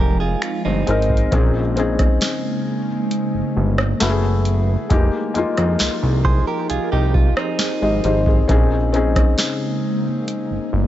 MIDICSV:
0, 0, Header, 1, 6, 480
1, 0, Start_track
1, 0, Tempo, 895522
1, 708, Time_signature, 4, 2, 24, 8
1, 5826, End_track
2, 0, Start_track
2, 0, Title_t, "Clean electric guitar"
2, 0, Program_c, 0, 27
2, 0, Note_on_c, 0, 67, 64
2, 0, Note_on_c, 0, 70, 78
2, 101, Note_off_c, 0, 70, 0
2, 103, Note_off_c, 0, 67, 0
2, 108, Note_on_c, 0, 68, 77
2, 111, Note_on_c, 0, 65, 65
2, 221, Note_off_c, 0, 65, 0
2, 222, Note_off_c, 0, 68, 0
2, 227, Note_on_c, 0, 65, 70
2, 342, Note_off_c, 0, 65, 0
2, 348, Note_on_c, 0, 63, 71
2, 351, Note_on_c, 0, 60, 61
2, 690, Note_off_c, 0, 63, 0
2, 692, Note_off_c, 0, 60, 0
2, 3349, Note_on_c, 0, 72, 77
2, 3352, Note_on_c, 0, 68, 64
2, 3462, Note_off_c, 0, 72, 0
2, 3464, Note_off_c, 0, 68, 0
2, 3470, Note_on_c, 0, 70, 86
2, 3472, Note_on_c, 0, 67, 73
2, 3583, Note_off_c, 0, 70, 0
2, 3584, Note_off_c, 0, 67, 0
2, 3589, Note_on_c, 0, 68, 82
2, 3592, Note_on_c, 0, 65, 74
2, 3703, Note_off_c, 0, 68, 0
2, 3704, Note_off_c, 0, 65, 0
2, 3709, Note_on_c, 0, 67, 89
2, 3713, Note_on_c, 0, 63, 75
2, 3823, Note_off_c, 0, 67, 0
2, 3824, Note_off_c, 0, 63, 0
2, 3828, Note_on_c, 0, 65, 82
2, 3942, Note_off_c, 0, 65, 0
2, 3949, Note_on_c, 0, 63, 71
2, 3952, Note_on_c, 0, 60, 60
2, 4527, Note_off_c, 0, 63, 0
2, 4529, Note_off_c, 0, 60, 0
2, 5826, End_track
3, 0, Start_track
3, 0, Title_t, "Felt piano"
3, 0, Program_c, 1, 0
3, 0, Control_c, 1, 64, 127
3, 464, Note_on_c, 1, 56, 79
3, 471, Note_on_c, 1, 60, 73
3, 478, Note_on_c, 1, 63, 78
3, 484, Note_on_c, 1, 70, 91
3, 612, Note_off_c, 1, 56, 0
3, 616, Note_off_c, 1, 60, 0
3, 619, Note_off_c, 1, 63, 0
3, 622, Note_off_c, 1, 70, 0
3, 703, Note_on_c, 1, 60, 88
3, 709, Note_on_c, 1, 61, 75
3, 715, Control_c, 1, 64, 0
3, 716, Note_on_c, 1, 63, 76
3, 723, Note_on_c, 1, 68, 101
3, 814, Control_c, 1, 64, 127
3, 852, Note_off_c, 1, 60, 0
3, 855, Note_off_c, 1, 61, 0
3, 858, Note_off_c, 1, 63, 0
3, 862, Note_off_c, 1, 68, 0
3, 943, Note_on_c, 1, 60, 91
3, 949, Note_on_c, 1, 61, 80
3, 955, Note_on_c, 1, 63, 77
3, 962, Note_on_c, 1, 68, 102
3, 1531, Note_off_c, 1, 60, 0
3, 1534, Note_off_c, 1, 61, 0
3, 1537, Note_off_c, 1, 63, 0
3, 1540, Note_off_c, 1, 68, 0
3, 2144, Note_on_c, 1, 57, 86
3, 2150, Note_on_c, 1, 59, 77
3, 2155, Control_c, 1, 64, 0
3, 2156, Note_on_c, 1, 64, 79
3, 2162, Note_on_c, 1, 66, 75
3, 2190, Note_off_c, 1, 66, 0
3, 2197, Note_on_c, 1, 68, 98
3, 2243, Control_c, 1, 64, 127
3, 2530, Note_off_c, 1, 57, 0
3, 2533, Note_off_c, 1, 59, 0
3, 2536, Note_off_c, 1, 64, 0
3, 2556, Note_off_c, 1, 68, 0
3, 2624, Note_on_c, 1, 56, 83
3, 2629, Note_on_c, 1, 58, 79
3, 2636, Control_c, 1, 64, 0
3, 2636, Note_on_c, 1, 63, 83
3, 2642, Note_on_c, 1, 67, 97
3, 2731, Control_c, 1, 64, 127
3, 2772, Note_off_c, 1, 56, 0
3, 2775, Note_off_c, 1, 58, 0
3, 2778, Note_off_c, 1, 63, 0
3, 2781, Note_off_c, 1, 67, 0
3, 2863, Note_on_c, 1, 56, 86
3, 2870, Note_on_c, 1, 58, 79
3, 2876, Note_on_c, 1, 63, 77
3, 2883, Note_on_c, 1, 65, 101
3, 3451, Note_off_c, 1, 56, 0
3, 3454, Note_off_c, 1, 58, 0
3, 3457, Note_off_c, 1, 63, 0
3, 3460, Note_off_c, 1, 65, 0
3, 4194, Note_on_c, 1, 75, 67
3, 4198, Note_on_c, 1, 67, 54
3, 4305, Note_off_c, 1, 75, 0
3, 4307, Note_off_c, 1, 67, 0
3, 4314, Note_on_c, 1, 72, 71
3, 4317, Note_on_c, 1, 63, 65
3, 4425, Note_off_c, 1, 72, 0
3, 4427, Note_off_c, 1, 63, 0
3, 4433, Note_on_c, 1, 68, 70
3, 4436, Note_on_c, 1, 60, 57
3, 4536, Note_off_c, 1, 60, 0
3, 4544, Note_on_c, 1, 60, 90
3, 4550, Note_on_c, 1, 61, 81
3, 4554, Control_c, 1, 64, 0
3, 4555, Note_off_c, 1, 68, 0
3, 4556, Note_on_c, 1, 63, 77
3, 4563, Note_on_c, 1, 68, 101
3, 4654, Control_c, 1, 64, 127
3, 4692, Note_off_c, 1, 60, 0
3, 4695, Note_off_c, 1, 61, 0
3, 4698, Note_off_c, 1, 63, 0
3, 4702, Note_off_c, 1, 68, 0
3, 4783, Note_on_c, 1, 60, 84
3, 4789, Note_on_c, 1, 61, 81
3, 4796, Note_on_c, 1, 63, 79
3, 4802, Note_on_c, 1, 68, 97
3, 5371, Note_off_c, 1, 60, 0
3, 5374, Note_off_c, 1, 61, 0
3, 5377, Note_off_c, 1, 63, 0
3, 5380, Note_off_c, 1, 68, 0
3, 5826, End_track
4, 0, Start_track
4, 0, Title_t, "Ambient pad"
4, 0, Program_c, 2, 92
4, 0, Note_on_c, 2, 53, 78
4, 0, Note_on_c, 2, 56, 85
4, 0, Note_on_c, 2, 60, 71
4, 0, Note_on_c, 2, 63, 71
4, 687, Note_off_c, 2, 53, 0
4, 687, Note_off_c, 2, 56, 0
4, 687, Note_off_c, 2, 60, 0
4, 687, Note_off_c, 2, 63, 0
4, 708, Note_on_c, 2, 49, 92
4, 708, Note_on_c, 2, 56, 80
4, 709, Note_on_c, 2, 58, 76
4, 2133, Note_off_c, 2, 56, 0
4, 2134, Note_off_c, 2, 49, 0
4, 2134, Note_off_c, 2, 58, 0
4, 2626, Note_on_c, 2, 63, 75
4, 2626, Note_on_c, 2, 68, 74
4, 2627, Note_on_c, 2, 53, 81
4, 2627, Note_on_c, 2, 67, 76
4, 2627, Note_on_c, 2, 70, 90
4, 4528, Note_off_c, 2, 53, 0
4, 4528, Note_off_c, 2, 63, 0
4, 4528, Note_off_c, 2, 68, 0
4, 4528, Note_off_c, 2, 70, 0
4, 4529, Note_off_c, 2, 67, 0
4, 4548, Note_on_c, 2, 49, 90
4, 4548, Note_on_c, 2, 56, 80
4, 4548, Note_on_c, 2, 58, 70
4, 5826, Note_off_c, 2, 49, 0
4, 5826, Note_off_c, 2, 56, 0
4, 5826, Note_off_c, 2, 58, 0
4, 5826, End_track
5, 0, Start_track
5, 0, Title_t, "Analog synth bass"
5, 0, Program_c, 3, 38
5, 0, Note_on_c, 3, 29, 86
5, 191, Note_off_c, 3, 29, 0
5, 350, Note_on_c, 3, 31, 91
5, 451, Note_off_c, 3, 31, 0
5, 471, Note_on_c, 3, 32, 86
5, 672, Note_off_c, 3, 32, 0
5, 708, Note_on_c, 3, 34, 121
5, 1114, Note_off_c, 3, 34, 0
5, 1792, Note_on_c, 3, 31, 54
5, 1839, Note_off_c, 3, 31, 0
5, 1911, Note_on_c, 3, 31, 93
5, 2112, Note_off_c, 3, 31, 0
5, 2151, Note_on_c, 3, 30, 100
5, 2555, Note_off_c, 3, 30, 0
5, 2629, Note_on_c, 3, 29, 116
5, 2730, Note_off_c, 3, 29, 0
5, 2870, Note_on_c, 3, 41, 55
5, 2918, Note_off_c, 3, 41, 0
5, 2991, Note_on_c, 3, 41, 95
5, 3091, Note_off_c, 3, 41, 0
5, 3112, Note_on_c, 3, 36, 51
5, 3159, Note_off_c, 3, 36, 0
5, 3231, Note_on_c, 3, 36, 100
5, 3433, Note_off_c, 3, 36, 0
5, 3591, Note_on_c, 3, 36, 52
5, 3639, Note_off_c, 3, 36, 0
5, 3712, Note_on_c, 3, 36, 99
5, 3913, Note_off_c, 3, 36, 0
5, 4191, Note_on_c, 3, 32, 83
5, 4291, Note_off_c, 3, 32, 0
5, 4311, Note_on_c, 3, 32, 95
5, 4513, Note_off_c, 3, 32, 0
5, 4550, Note_on_c, 3, 34, 116
5, 4955, Note_off_c, 3, 34, 0
5, 5632, Note_on_c, 3, 31, 52
5, 5679, Note_off_c, 3, 31, 0
5, 5751, Note_on_c, 3, 31, 93
5, 5826, Note_off_c, 3, 31, 0
5, 5826, End_track
6, 0, Start_track
6, 0, Title_t, "Drums"
6, 225, Note_on_c, 9, 26, 96
6, 230, Note_on_c, 9, 42, 63
6, 278, Note_off_c, 9, 26, 0
6, 284, Note_off_c, 9, 42, 0
6, 468, Note_on_c, 9, 42, 54
6, 521, Note_off_c, 9, 42, 0
6, 548, Note_on_c, 9, 42, 42
6, 587, Note_on_c, 9, 36, 81
6, 602, Note_off_c, 9, 42, 0
6, 627, Note_on_c, 9, 42, 32
6, 641, Note_off_c, 9, 36, 0
6, 681, Note_off_c, 9, 42, 0
6, 708, Note_on_c, 9, 36, 115
6, 708, Note_on_c, 9, 42, 71
6, 761, Note_off_c, 9, 36, 0
6, 761, Note_off_c, 9, 42, 0
6, 948, Note_on_c, 9, 42, 59
6, 1001, Note_off_c, 9, 42, 0
6, 1067, Note_on_c, 9, 36, 100
6, 1067, Note_on_c, 9, 42, 58
6, 1068, Note_on_c, 9, 37, 63
6, 1120, Note_off_c, 9, 36, 0
6, 1121, Note_off_c, 9, 37, 0
6, 1121, Note_off_c, 9, 42, 0
6, 1184, Note_on_c, 9, 42, 79
6, 1188, Note_on_c, 9, 38, 118
6, 1238, Note_off_c, 9, 42, 0
6, 1242, Note_off_c, 9, 38, 0
6, 1668, Note_on_c, 9, 42, 73
6, 1721, Note_off_c, 9, 42, 0
6, 2028, Note_on_c, 9, 37, 102
6, 2081, Note_off_c, 9, 37, 0
6, 2146, Note_on_c, 9, 38, 105
6, 2151, Note_on_c, 9, 42, 66
6, 2200, Note_off_c, 9, 38, 0
6, 2205, Note_off_c, 9, 42, 0
6, 2387, Note_on_c, 9, 42, 57
6, 2440, Note_off_c, 9, 42, 0
6, 2628, Note_on_c, 9, 36, 122
6, 2628, Note_on_c, 9, 42, 69
6, 2682, Note_off_c, 9, 36, 0
6, 2682, Note_off_c, 9, 42, 0
6, 2868, Note_on_c, 9, 42, 55
6, 2922, Note_off_c, 9, 42, 0
6, 2988, Note_on_c, 9, 37, 67
6, 2988, Note_on_c, 9, 42, 58
6, 3041, Note_off_c, 9, 42, 0
6, 3042, Note_off_c, 9, 37, 0
6, 3104, Note_on_c, 9, 42, 80
6, 3108, Note_on_c, 9, 38, 110
6, 3158, Note_off_c, 9, 42, 0
6, 3162, Note_off_c, 9, 38, 0
6, 3348, Note_on_c, 9, 36, 95
6, 3402, Note_off_c, 9, 36, 0
6, 3589, Note_on_c, 9, 42, 75
6, 3643, Note_off_c, 9, 42, 0
6, 3829, Note_on_c, 9, 36, 103
6, 3883, Note_off_c, 9, 36, 0
6, 3949, Note_on_c, 9, 37, 101
6, 4003, Note_off_c, 9, 37, 0
6, 4067, Note_on_c, 9, 38, 104
6, 4072, Note_on_c, 9, 42, 68
6, 4121, Note_off_c, 9, 38, 0
6, 4126, Note_off_c, 9, 42, 0
6, 4309, Note_on_c, 9, 42, 59
6, 4362, Note_off_c, 9, 42, 0
6, 4429, Note_on_c, 9, 36, 94
6, 4482, Note_off_c, 9, 36, 0
6, 4549, Note_on_c, 9, 36, 122
6, 4551, Note_on_c, 9, 42, 70
6, 4603, Note_off_c, 9, 36, 0
6, 4605, Note_off_c, 9, 42, 0
6, 4791, Note_on_c, 9, 42, 54
6, 4845, Note_off_c, 9, 42, 0
6, 4908, Note_on_c, 9, 36, 101
6, 4911, Note_on_c, 9, 37, 70
6, 4911, Note_on_c, 9, 42, 61
6, 4962, Note_off_c, 9, 36, 0
6, 4964, Note_off_c, 9, 42, 0
6, 4965, Note_off_c, 9, 37, 0
6, 5026, Note_on_c, 9, 42, 80
6, 5030, Note_on_c, 9, 38, 116
6, 5080, Note_off_c, 9, 42, 0
6, 5084, Note_off_c, 9, 38, 0
6, 5509, Note_on_c, 9, 42, 78
6, 5563, Note_off_c, 9, 42, 0
6, 5826, End_track
0, 0, End_of_file